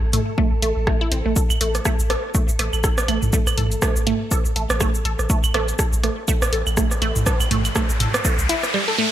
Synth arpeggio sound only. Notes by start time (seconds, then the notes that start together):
0.13 A3
0.38 A3
0.62 A3
0.87 A3
1.01 E4
1.12 C4
1.26 A3
1.36 A4
1.61 A3
1.85 A3
2.10 A4
2.35 A3
2.59 A3
2.84 A4
3.08 A3
3.33 A3
3.58 A4
3.82 A3
4.07 A3
4.31 A4
4.56 A3
4.81 A3
5.05 A4
5.30 A3
5.54 A3
5.79 A4
6.03 A3
6.28 A3
6.53 A4
6.77 A3
7.02 A3
7.26 A4
7.51 A3
7.76 A3
8.00 A4
8.25 A3
8.49 E4
8.74 G3
8.88 A4
8.98 A3